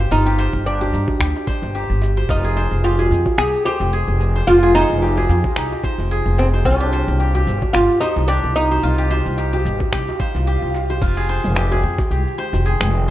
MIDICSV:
0, 0, Header, 1, 8, 480
1, 0, Start_track
1, 0, Tempo, 545455
1, 98, Time_signature, 4, 2, 24, 8
1, 11531, End_track
2, 0, Start_track
2, 0, Title_t, "Guzheng"
2, 0, Program_c, 0, 107
2, 0, Note_on_c, 0, 65, 90
2, 0, Note_on_c, 0, 67, 97
2, 0, Note_on_c, 0, 72, 77
2, 94, Note_off_c, 0, 65, 0
2, 98, Note_on_c, 0, 65, 86
2, 228, Note_off_c, 0, 67, 0
2, 231, Note_on_c, 0, 67, 96
2, 334, Note_off_c, 0, 72, 0
2, 338, Note_on_c, 0, 72, 93
2, 577, Note_off_c, 0, 67, 0
2, 580, Note_on_c, 0, 67, 74
2, 708, Note_off_c, 0, 67, 0
2, 711, Note_on_c, 0, 67, 84
2, 1052, Note_off_c, 0, 67, 0
2, 1056, Note_on_c, 0, 67, 76
2, 1291, Note_off_c, 0, 72, 0
2, 1295, Note_on_c, 0, 72, 94
2, 1535, Note_off_c, 0, 67, 0
2, 1538, Note_on_c, 0, 67, 91
2, 1906, Note_off_c, 0, 72, 0
2, 1910, Note_on_c, 0, 72, 73
2, 2013, Note_off_c, 0, 65, 0
2, 2016, Note_on_c, 0, 65, 92
2, 2150, Note_on_c, 0, 68, 93
2, 2203, Note_off_c, 0, 67, 0
2, 2254, Note_off_c, 0, 72, 0
2, 2258, Note_on_c, 0, 72, 82
2, 2498, Note_on_c, 0, 67, 74
2, 2550, Note_off_c, 0, 68, 0
2, 2629, Note_on_c, 0, 68, 85
2, 2682, Note_off_c, 0, 67, 0
2, 2976, Note_on_c, 0, 67, 77
2, 3029, Note_off_c, 0, 68, 0
2, 3214, Note_off_c, 0, 72, 0
2, 3217, Note_on_c, 0, 72, 93
2, 3458, Note_on_c, 0, 68, 97
2, 3510, Note_off_c, 0, 67, 0
2, 3829, Note_off_c, 0, 72, 0
2, 3832, Note_on_c, 0, 72, 72
2, 3934, Note_off_c, 0, 65, 0
2, 3938, Note_on_c, 0, 65, 91
2, 4069, Note_off_c, 0, 68, 0
2, 4072, Note_on_c, 0, 68, 96
2, 4174, Note_off_c, 0, 72, 0
2, 4177, Note_on_c, 0, 72, 90
2, 4418, Note_on_c, 0, 67, 76
2, 4470, Note_off_c, 0, 68, 0
2, 4551, Note_on_c, 0, 68, 89
2, 4604, Note_off_c, 0, 67, 0
2, 4898, Note_on_c, 0, 67, 81
2, 4950, Note_off_c, 0, 68, 0
2, 5135, Note_off_c, 0, 72, 0
2, 5139, Note_on_c, 0, 72, 94
2, 5378, Note_on_c, 0, 68, 96
2, 5431, Note_off_c, 0, 67, 0
2, 5747, Note_off_c, 0, 72, 0
2, 5750, Note_on_c, 0, 72, 76
2, 5853, Note_off_c, 0, 65, 0
2, 5857, Note_on_c, 0, 65, 95
2, 5987, Note_on_c, 0, 67, 102
2, 6040, Note_off_c, 0, 68, 0
2, 6092, Note_off_c, 0, 72, 0
2, 6095, Note_on_c, 0, 72, 92
2, 6331, Note_off_c, 0, 67, 0
2, 6334, Note_on_c, 0, 67, 77
2, 6463, Note_off_c, 0, 67, 0
2, 6466, Note_on_c, 0, 67, 96
2, 6811, Note_off_c, 0, 67, 0
2, 6814, Note_on_c, 0, 67, 75
2, 7050, Note_off_c, 0, 72, 0
2, 7053, Note_on_c, 0, 72, 94
2, 7288, Note_off_c, 0, 67, 0
2, 7291, Note_on_c, 0, 67, 97
2, 7664, Note_off_c, 0, 72, 0
2, 7667, Note_on_c, 0, 72, 75
2, 7769, Note_off_c, 0, 65, 0
2, 7773, Note_on_c, 0, 65, 90
2, 7901, Note_off_c, 0, 67, 0
2, 7905, Note_on_c, 0, 67, 97
2, 8010, Note_off_c, 0, 72, 0
2, 8013, Note_on_c, 0, 72, 93
2, 8249, Note_off_c, 0, 67, 0
2, 8253, Note_on_c, 0, 67, 83
2, 8382, Note_off_c, 0, 67, 0
2, 8386, Note_on_c, 0, 67, 96
2, 8730, Note_off_c, 0, 67, 0
2, 8733, Note_on_c, 0, 67, 83
2, 8969, Note_off_c, 0, 72, 0
2, 8973, Note_on_c, 0, 72, 92
2, 9211, Note_off_c, 0, 67, 0
2, 9214, Note_on_c, 0, 67, 98
2, 9586, Note_off_c, 0, 72, 0
2, 9590, Note_on_c, 0, 72, 73
2, 9694, Note_off_c, 0, 65, 0
2, 9698, Note_on_c, 0, 65, 93
2, 9829, Note_on_c, 0, 68, 99
2, 9882, Note_off_c, 0, 67, 0
2, 9933, Note_off_c, 0, 72, 0
2, 9936, Note_on_c, 0, 72, 93
2, 10179, Note_on_c, 0, 67, 74
2, 10231, Note_off_c, 0, 68, 0
2, 10311, Note_on_c, 0, 68, 86
2, 10364, Note_off_c, 0, 67, 0
2, 10658, Note_on_c, 0, 67, 81
2, 10710, Note_off_c, 0, 68, 0
2, 10892, Note_off_c, 0, 72, 0
2, 10896, Note_on_c, 0, 72, 96
2, 11138, Note_on_c, 0, 68, 93
2, 11191, Note_off_c, 0, 67, 0
2, 11508, Note_off_c, 0, 72, 0
2, 11531, Note_off_c, 0, 65, 0
2, 11531, Note_off_c, 0, 68, 0
2, 11531, End_track
3, 0, Start_track
3, 0, Title_t, "Oud"
3, 0, Program_c, 1, 24
3, 0, Note_on_c, 1, 65, 92
3, 100, Note_off_c, 1, 65, 0
3, 104, Note_on_c, 1, 63, 93
3, 580, Note_off_c, 1, 63, 0
3, 584, Note_on_c, 1, 62, 75
3, 1505, Note_off_c, 1, 62, 0
3, 2026, Note_on_c, 1, 63, 76
3, 2497, Note_off_c, 1, 63, 0
3, 2501, Note_on_c, 1, 65, 80
3, 2946, Note_off_c, 1, 65, 0
3, 2974, Note_on_c, 1, 68, 108
3, 3212, Note_off_c, 1, 68, 0
3, 3216, Note_on_c, 1, 67, 93
3, 3663, Note_off_c, 1, 67, 0
3, 3935, Note_on_c, 1, 65, 108
3, 4174, Note_off_c, 1, 65, 0
3, 4178, Note_on_c, 1, 63, 102
3, 4624, Note_off_c, 1, 63, 0
3, 5622, Note_on_c, 1, 60, 83
3, 5686, Note_off_c, 1, 60, 0
3, 5855, Note_on_c, 1, 62, 90
3, 6801, Note_off_c, 1, 62, 0
3, 6805, Note_on_c, 1, 65, 109
3, 7041, Note_off_c, 1, 65, 0
3, 7044, Note_on_c, 1, 63, 93
3, 7282, Note_off_c, 1, 63, 0
3, 7285, Note_on_c, 1, 62, 101
3, 7514, Note_off_c, 1, 62, 0
3, 7530, Note_on_c, 1, 63, 96
3, 8459, Note_off_c, 1, 63, 0
3, 11531, End_track
4, 0, Start_track
4, 0, Title_t, "Ambient pad"
4, 0, Program_c, 2, 92
4, 9693, Note_on_c, 2, 51, 76
4, 9693, Note_on_c, 2, 65, 73
4, 9694, Note_on_c, 2, 79, 86
4, 9695, Note_on_c, 2, 56, 67
4, 11531, Note_off_c, 2, 51, 0
4, 11531, Note_off_c, 2, 56, 0
4, 11531, Note_off_c, 2, 65, 0
4, 11531, Note_off_c, 2, 79, 0
4, 11531, End_track
5, 0, Start_track
5, 0, Title_t, "Upright bass"
5, 0, Program_c, 3, 32
5, 100, Note_on_c, 3, 31, 87
5, 439, Note_off_c, 3, 31, 0
5, 469, Note_on_c, 3, 31, 82
5, 791, Note_off_c, 3, 31, 0
5, 820, Note_on_c, 3, 43, 91
5, 931, Note_off_c, 3, 43, 0
5, 1055, Note_on_c, 3, 38, 82
5, 1169, Note_off_c, 3, 38, 0
5, 1428, Note_on_c, 3, 31, 89
5, 1629, Note_off_c, 3, 31, 0
5, 1669, Note_on_c, 3, 31, 86
5, 1991, Note_off_c, 3, 31, 0
5, 2014, Note_on_c, 3, 29, 84
5, 2356, Note_off_c, 3, 29, 0
5, 2387, Note_on_c, 3, 29, 86
5, 2710, Note_off_c, 3, 29, 0
5, 2735, Note_on_c, 3, 41, 94
5, 2848, Note_off_c, 3, 41, 0
5, 2974, Note_on_c, 3, 36, 85
5, 3088, Note_off_c, 3, 36, 0
5, 3345, Note_on_c, 3, 29, 94
5, 3548, Note_off_c, 3, 29, 0
5, 3587, Note_on_c, 3, 29, 88
5, 3910, Note_off_c, 3, 29, 0
5, 3938, Note_on_c, 3, 29, 83
5, 4278, Note_off_c, 3, 29, 0
5, 4309, Note_on_c, 3, 29, 82
5, 4631, Note_off_c, 3, 29, 0
5, 4655, Note_on_c, 3, 41, 95
5, 4769, Note_off_c, 3, 41, 0
5, 4894, Note_on_c, 3, 36, 82
5, 5008, Note_off_c, 3, 36, 0
5, 5265, Note_on_c, 3, 29, 91
5, 5468, Note_off_c, 3, 29, 0
5, 5507, Note_on_c, 3, 29, 89
5, 5830, Note_off_c, 3, 29, 0
5, 5854, Note_on_c, 3, 36, 88
5, 6196, Note_off_c, 3, 36, 0
5, 6229, Note_on_c, 3, 36, 94
5, 6551, Note_off_c, 3, 36, 0
5, 6574, Note_on_c, 3, 31, 102
5, 6688, Note_off_c, 3, 31, 0
5, 6814, Note_on_c, 3, 31, 81
5, 6928, Note_off_c, 3, 31, 0
5, 7184, Note_on_c, 3, 36, 96
5, 7387, Note_off_c, 3, 36, 0
5, 7423, Note_on_c, 3, 36, 88
5, 7748, Note_off_c, 3, 36, 0
5, 7771, Note_on_c, 3, 36, 88
5, 8114, Note_off_c, 3, 36, 0
5, 8147, Note_on_c, 3, 36, 93
5, 8470, Note_off_c, 3, 36, 0
5, 8496, Note_on_c, 3, 31, 94
5, 8609, Note_off_c, 3, 31, 0
5, 8733, Note_on_c, 3, 36, 78
5, 8848, Note_off_c, 3, 36, 0
5, 9106, Note_on_c, 3, 36, 92
5, 9308, Note_off_c, 3, 36, 0
5, 9345, Note_on_c, 3, 36, 85
5, 9669, Note_off_c, 3, 36, 0
5, 9692, Note_on_c, 3, 29, 87
5, 10035, Note_off_c, 3, 29, 0
5, 10066, Note_on_c, 3, 29, 85
5, 10389, Note_off_c, 3, 29, 0
5, 10411, Note_on_c, 3, 41, 93
5, 10527, Note_off_c, 3, 41, 0
5, 10653, Note_on_c, 3, 36, 79
5, 10768, Note_off_c, 3, 36, 0
5, 11026, Note_on_c, 3, 29, 96
5, 11228, Note_off_c, 3, 29, 0
5, 11268, Note_on_c, 3, 29, 98
5, 11531, Note_off_c, 3, 29, 0
5, 11531, End_track
6, 0, Start_track
6, 0, Title_t, "Swell"
6, 0, Program_c, 4, 103
6, 8737, Note_on_c, 4, 60, 75
6, 9697, Note_off_c, 4, 60, 0
6, 11531, End_track
7, 0, Start_track
7, 0, Title_t, "Djembe"
7, 335, Note_on_c, 9, 63, 57
7, 341, Note_on_c, 9, 62, 62
7, 423, Note_off_c, 9, 63, 0
7, 429, Note_off_c, 9, 62, 0
7, 720, Note_on_c, 9, 64, 83
7, 808, Note_off_c, 9, 64, 0
7, 951, Note_on_c, 9, 64, 84
7, 955, Note_on_c, 9, 63, 31
7, 1039, Note_off_c, 9, 64, 0
7, 1043, Note_off_c, 9, 63, 0
7, 1193, Note_on_c, 9, 62, 30
7, 1201, Note_on_c, 9, 63, 69
7, 1281, Note_off_c, 9, 62, 0
7, 1289, Note_off_c, 9, 63, 0
7, 1433, Note_on_c, 9, 62, 48
7, 1521, Note_off_c, 9, 62, 0
7, 1775, Note_on_c, 9, 62, 55
7, 1863, Note_off_c, 9, 62, 0
7, 1910, Note_on_c, 9, 62, 33
7, 1912, Note_on_c, 9, 63, 60
7, 1998, Note_off_c, 9, 62, 0
7, 2000, Note_off_c, 9, 63, 0
7, 2258, Note_on_c, 9, 62, 64
7, 2346, Note_off_c, 9, 62, 0
7, 2630, Note_on_c, 9, 64, 80
7, 2718, Note_off_c, 9, 64, 0
7, 2865, Note_on_c, 9, 64, 87
7, 2953, Note_off_c, 9, 64, 0
7, 3217, Note_on_c, 9, 63, 73
7, 3305, Note_off_c, 9, 63, 0
7, 3349, Note_on_c, 9, 62, 53
7, 3437, Note_off_c, 9, 62, 0
7, 3834, Note_on_c, 9, 63, 63
7, 3922, Note_off_c, 9, 63, 0
7, 4175, Note_on_c, 9, 63, 50
7, 4177, Note_on_c, 9, 62, 58
7, 4263, Note_off_c, 9, 63, 0
7, 4265, Note_off_c, 9, 62, 0
7, 4549, Note_on_c, 9, 64, 81
7, 4637, Note_off_c, 9, 64, 0
7, 4790, Note_on_c, 9, 63, 28
7, 4791, Note_on_c, 9, 64, 77
7, 4878, Note_off_c, 9, 63, 0
7, 4879, Note_off_c, 9, 64, 0
7, 5035, Note_on_c, 9, 63, 67
7, 5123, Note_off_c, 9, 63, 0
7, 5278, Note_on_c, 9, 62, 49
7, 5366, Note_off_c, 9, 62, 0
7, 5616, Note_on_c, 9, 62, 59
7, 5704, Note_off_c, 9, 62, 0
7, 5750, Note_on_c, 9, 62, 30
7, 5755, Note_on_c, 9, 63, 57
7, 5838, Note_off_c, 9, 62, 0
7, 5843, Note_off_c, 9, 63, 0
7, 6101, Note_on_c, 9, 62, 61
7, 6189, Note_off_c, 9, 62, 0
7, 6467, Note_on_c, 9, 64, 78
7, 6555, Note_off_c, 9, 64, 0
7, 6709, Note_on_c, 9, 64, 78
7, 6797, Note_off_c, 9, 64, 0
7, 7054, Note_on_c, 9, 63, 75
7, 7142, Note_off_c, 9, 63, 0
7, 7184, Note_on_c, 9, 62, 53
7, 7272, Note_off_c, 9, 62, 0
7, 7664, Note_on_c, 9, 63, 68
7, 7752, Note_off_c, 9, 63, 0
7, 8013, Note_on_c, 9, 62, 61
7, 8016, Note_on_c, 9, 63, 57
7, 8101, Note_off_c, 9, 62, 0
7, 8104, Note_off_c, 9, 63, 0
7, 8392, Note_on_c, 9, 64, 80
7, 8480, Note_off_c, 9, 64, 0
7, 8630, Note_on_c, 9, 63, 31
7, 8632, Note_on_c, 9, 64, 80
7, 8718, Note_off_c, 9, 63, 0
7, 8720, Note_off_c, 9, 64, 0
7, 8873, Note_on_c, 9, 62, 39
7, 8877, Note_on_c, 9, 63, 80
7, 8961, Note_off_c, 9, 62, 0
7, 8965, Note_off_c, 9, 63, 0
7, 9118, Note_on_c, 9, 62, 58
7, 9206, Note_off_c, 9, 62, 0
7, 9455, Note_on_c, 9, 62, 65
7, 9543, Note_off_c, 9, 62, 0
7, 9591, Note_on_c, 9, 63, 66
7, 9592, Note_on_c, 9, 62, 40
7, 9679, Note_off_c, 9, 63, 0
7, 9680, Note_off_c, 9, 62, 0
7, 9832, Note_on_c, 9, 62, 63
7, 9920, Note_off_c, 9, 62, 0
7, 10166, Note_on_c, 9, 62, 61
7, 10254, Note_off_c, 9, 62, 0
7, 10308, Note_on_c, 9, 64, 88
7, 10396, Note_off_c, 9, 64, 0
7, 10549, Note_on_c, 9, 62, 65
7, 10553, Note_on_c, 9, 64, 90
7, 10637, Note_off_c, 9, 62, 0
7, 10641, Note_off_c, 9, 64, 0
7, 10902, Note_on_c, 9, 62, 36
7, 10990, Note_off_c, 9, 62, 0
7, 11033, Note_on_c, 9, 63, 75
7, 11121, Note_off_c, 9, 63, 0
7, 11375, Note_on_c, 9, 62, 47
7, 11463, Note_off_c, 9, 62, 0
7, 11531, End_track
8, 0, Start_track
8, 0, Title_t, "Drums"
8, 2, Note_on_c, 9, 82, 33
8, 90, Note_off_c, 9, 82, 0
8, 109, Note_on_c, 9, 82, 46
8, 197, Note_off_c, 9, 82, 0
8, 241, Note_on_c, 9, 82, 27
8, 329, Note_off_c, 9, 82, 0
8, 347, Note_on_c, 9, 82, 79
8, 435, Note_off_c, 9, 82, 0
8, 470, Note_on_c, 9, 36, 58
8, 482, Note_on_c, 9, 82, 32
8, 558, Note_off_c, 9, 36, 0
8, 570, Note_off_c, 9, 82, 0
8, 589, Note_on_c, 9, 82, 40
8, 677, Note_off_c, 9, 82, 0
8, 721, Note_on_c, 9, 82, 31
8, 809, Note_off_c, 9, 82, 0
8, 829, Note_on_c, 9, 82, 78
8, 917, Note_off_c, 9, 82, 0
8, 949, Note_on_c, 9, 36, 100
8, 964, Note_on_c, 9, 82, 31
8, 1037, Note_off_c, 9, 36, 0
8, 1052, Note_off_c, 9, 82, 0
8, 1057, Note_on_c, 9, 36, 59
8, 1061, Note_on_c, 9, 26, 75
8, 1069, Note_on_c, 9, 82, 44
8, 1145, Note_off_c, 9, 36, 0
8, 1149, Note_off_c, 9, 26, 0
8, 1157, Note_off_c, 9, 82, 0
8, 1205, Note_on_c, 9, 82, 30
8, 1293, Note_off_c, 9, 82, 0
8, 1297, Note_on_c, 9, 36, 102
8, 1311, Note_on_c, 9, 82, 79
8, 1385, Note_off_c, 9, 36, 0
8, 1399, Note_off_c, 9, 82, 0
8, 1445, Note_on_c, 9, 82, 34
8, 1533, Note_off_c, 9, 82, 0
8, 1550, Note_on_c, 9, 82, 41
8, 1638, Note_off_c, 9, 82, 0
8, 1788, Note_on_c, 9, 82, 79
8, 1876, Note_off_c, 9, 82, 0
8, 1922, Note_on_c, 9, 82, 31
8, 2010, Note_off_c, 9, 82, 0
8, 2016, Note_on_c, 9, 36, 122
8, 2029, Note_on_c, 9, 82, 41
8, 2104, Note_off_c, 9, 36, 0
8, 2117, Note_off_c, 9, 82, 0
8, 2160, Note_on_c, 9, 82, 28
8, 2248, Note_off_c, 9, 82, 0
8, 2267, Note_on_c, 9, 82, 71
8, 2355, Note_off_c, 9, 82, 0
8, 2400, Note_on_c, 9, 82, 31
8, 2488, Note_off_c, 9, 82, 0
8, 2505, Note_on_c, 9, 82, 40
8, 2593, Note_off_c, 9, 82, 0
8, 2638, Note_on_c, 9, 82, 30
8, 2726, Note_off_c, 9, 82, 0
8, 2745, Note_on_c, 9, 82, 76
8, 2833, Note_off_c, 9, 82, 0
8, 2868, Note_on_c, 9, 36, 106
8, 2878, Note_on_c, 9, 82, 30
8, 2956, Note_off_c, 9, 36, 0
8, 2966, Note_off_c, 9, 82, 0
8, 2978, Note_on_c, 9, 26, 69
8, 2986, Note_on_c, 9, 82, 42
8, 3066, Note_off_c, 9, 26, 0
8, 3074, Note_off_c, 9, 82, 0
8, 3117, Note_on_c, 9, 82, 28
8, 3205, Note_off_c, 9, 82, 0
8, 3223, Note_on_c, 9, 82, 75
8, 3311, Note_off_c, 9, 82, 0
8, 3357, Note_on_c, 9, 82, 33
8, 3445, Note_off_c, 9, 82, 0
8, 3463, Note_on_c, 9, 82, 41
8, 3551, Note_off_c, 9, 82, 0
8, 3702, Note_on_c, 9, 82, 76
8, 3790, Note_off_c, 9, 82, 0
8, 3839, Note_on_c, 9, 82, 29
8, 3927, Note_off_c, 9, 82, 0
8, 3943, Note_on_c, 9, 82, 40
8, 4031, Note_off_c, 9, 82, 0
8, 4077, Note_on_c, 9, 82, 29
8, 4165, Note_off_c, 9, 82, 0
8, 4183, Note_on_c, 9, 82, 70
8, 4271, Note_off_c, 9, 82, 0
8, 4318, Note_on_c, 9, 82, 29
8, 4406, Note_off_c, 9, 82, 0
8, 4424, Note_on_c, 9, 82, 37
8, 4512, Note_off_c, 9, 82, 0
8, 4559, Note_on_c, 9, 82, 30
8, 4647, Note_off_c, 9, 82, 0
8, 4666, Note_on_c, 9, 82, 72
8, 4754, Note_off_c, 9, 82, 0
8, 4789, Note_on_c, 9, 36, 104
8, 4797, Note_on_c, 9, 82, 28
8, 4877, Note_off_c, 9, 36, 0
8, 4885, Note_off_c, 9, 82, 0
8, 4895, Note_on_c, 9, 26, 66
8, 4904, Note_on_c, 9, 82, 40
8, 4983, Note_off_c, 9, 26, 0
8, 4992, Note_off_c, 9, 82, 0
8, 5036, Note_on_c, 9, 82, 29
8, 5124, Note_off_c, 9, 82, 0
8, 5136, Note_on_c, 9, 36, 90
8, 5142, Note_on_c, 9, 82, 74
8, 5224, Note_off_c, 9, 36, 0
8, 5230, Note_off_c, 9, 82, 0
8, 5277, Note_on_c, 9, 82, 33
8, 5365, Note_off_c, 9, 82, 0
8, 5385, Note_on_c, 9, 82, 39
8, 5473, Note_off_c, 9, 82, 0
8, 5623, Note_on_c, 9, 82, 75
8, 5711, Note_off_c, 9, 82, 0
8, 5757, Note_on_c, 9, 82, 27
8, 5845, Note_off_c, 9, 82, 0
8, 5855, Note_on_c, 9, 36, 118
8, 5865, Note_on_c, 9, 82, 40
8, 5943, Note_off_c, 9, 36, 0
8, 5953, Note_off_c, 9, 82, 0
8, 5996, Note_on_c, 9, 82, 28
8, 6084, Note_off_c, 9, 82, 0
8, 6104, Note_on_c, 9, 82, 70
8, 6192, Note_off_c, 9, 82, 0
8, 6237, Note_on_c, 9, 82, 31
8, 6325, Note_off_c, 9, 82, 0
8, 6345, Note_on_c, 9, 82, 36
8, 6433, Note_off_c, 9, 82, 0
8, 6478, Note_on_c, 9, 82, 29
8, 6566, Note_off_c, 9, 82, 0
8, 6584, Note_on_c, 9, 82, 74
8, 6672, Note_off_c, 9, 82, 0
8, 6707, Note_on_c, 9, 36, 103
8, 6720, Note_on_c, 9, 82, 30
8, 6795, Note_off_c, 9, 36, 0
8, 6808, Note_off_c, 9, 82, 0
8, 6816, Note_on_c, 9, 26, 70
8, 6824, Note_on_c, 9, 82, 38
8, 6904, Note_off_c, 9, 26, 0
8, 6912, Note_off_c, 9, 82, 0
8, 6957, Note_on_c, 9, 82, 29
8, 7045, Note_off_c, 9, 82, 0
8, 7064, Note_on_c, 9, 82, 67
8, 7152, Note_off_c, 9, 82, 0
8, 7196, Note_on_c, 9, 82, 33
8, 7284, Note_off_c, 9, 82, 0
8, 7304, Note_on_c, 9, 82, 37
8, 7392, Note_off_c, 9, 82, 0
8, 7543, Note_on_c, 9, 82, 72
8, 7631, Note_off_c, 9, 82, 0
8, 7675, Note_on_c, 9, 82, 31
8, 7763, Note_off_c, 9, 82, 0
8, 7781, Note_on_c, 9, 82, 43
8, 7869, Note_off_c, 9, 82, 0
8, 7916, Note_on_c, 9, 82, 27
8, 8004, Note_off_c, 9, 82, 0
8, 8020, Note_on_c, 9, 82, 70
8, 8108, Note_off_c, 9, 82, 0
8, 8153, Note_on_c, 9, 82, 28
8, 8241, Note_off_c, 9, 82, 0
8, 8261, Note_on_c, 9, 82, 38
8, 8349, Note_off_c, 9, 82, 0
8, 8395, Note_on_c, 9, 82, 30
8, 8483, Note_off_c, 9, 82, 0
8, 8503, Note_on_c, 9, 82, 78
8, 8591, Note_off_c, 9, 82, 0
8, 8627, Note_on_c, 9, 36, 105
8, 8636, Note_on_c, 9, 82, 29
8, 8715, Note_off_c, 9, 36, 0
8, 8724, Note_off_c, 9, 82, 0
8, 8734, Note_on_c, 9, 36, 58
8, 8735, Note_on_c, 9, 26, 70
8, 8743, Note_on_c, 9, 82, 40
8, 8822, Note_off_c, 9, 36, 0
8, 8823, Note_off_c, 9, 26, 0
8, 8831, Note_off_c, 9, 82, 0
8, 8876, Note_on_c, 9, 82, 28
8, 8964, Note_off_c, 9, 82, 0
8, 8974, Note_on_c, 9, 36, 98
8, 8984, Note_on_c, 9, 82, 69
8, 9062, Note_off_c, 9, 36, 0
8, 9072, Note_off_c, 9, 82, 0
8, 9117, Note_on_c, 9, 82, 31
8, 9205, Note_off_c, 9, 82, 0
8, 9226, Note_on_c, 9, 82, 42
8, 9314, Note_off_c, 9, 82, 0
8, 9465, Note_on_c, 9, 82, 72
8, 9553, Note_off_c, 9, 82, 0
8, 9597, Note_on_c, 9, 82, 29
8, 9685, Note_off_c, 9, 82, 0
8, 9695, Note_on_c, 9, 36, 123
8, 9697, Note_on_c, 9, 49, 98
8, 9705, Note_on_c, 9, 82, 54
8, 9783, Note_off_c, 9, 36, 0
8, 9785, Note_off_c, 9, 49, 0
8, 9793, Note_off_c, 9, 82, 0
8, 9839, Note_on_c, 9, 82, 34
8, 9927, Note_off_c, 9, 82, 0
8, 10070, Note_on_c, 9, 45, 57
8, 10078, Note_on_c, 9, 82, 64
8, 10158, Note_off_c, 9, 45, 0
8, 10166, Note_off_c, 9, 82, 0
8, 10177, Note_on_c, 9, 26, 73
8, 10185, Note_on_c, 9, 82, 53
8, 10265, Note_off_c, 9, 26, 0
8, 10273, Note_off_c, 9, 82, 0
8, 10317, Note_on_c, 9, 82, 34
8, 10405, Note_off_c, 9, 82, 0
8, 10547, Note_on_c, 9, 36, 108
8, 10557, Note_on_c, 9, 82, 65
8, 10635, Note_off_c, 9, 36, 0
8, 10645, Note_off_c, 9, 82, 0
8, 10664, Note_on_c, 9, 82, 55
8, 10752, Note_off_c, 9, 82, 0
8, 10800, Note_on_c, 9, 82, 31
8, 10888, Note_off_c, 9, 82, 0
8, 11040, Note_on_c, 9, 82, 69
8, 11128, Note_off_c, 9, 82, 0
8, 11146, Note_on_c, 9, 82, 56
8, 11234, Note_off_c, 9, 82, 0
8, 11271, Note_on_c, 9, 26, 79
8, 11279, Note_on_c, 9, 82, 33
8, 11359, Note_off_c, 9, 26, 0
8, 11367, Note_off_c, 9, 82, 0
8, 11531, End_track
0, 0, End_of_file